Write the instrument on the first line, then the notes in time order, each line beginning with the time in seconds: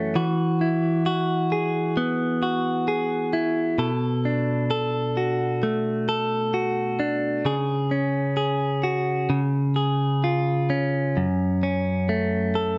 clean electric guitar
Already playing: F#2 E3 A3 C#4 F#4
0.16 E3 F#4
0.61 E4
1.06 F#4
1.52 G#4
1.97 B3
2.43 F#4
2.88 G#4
3.33 E4
3.78 B2 A4
4.26 D4
4.71 A4
5.17 F#4
5.63 A3
6.09 A4
6.54 F#4
6.99 D4
7.45 C#3 G#4
7.91 C#4
8.37 G#4
8.84 F#4
9.30 C#3
9.76 G#4
10.24 F4
10.70 C#4
11.17 F#2
11.63 C#4
12.09 A3
12.55 A4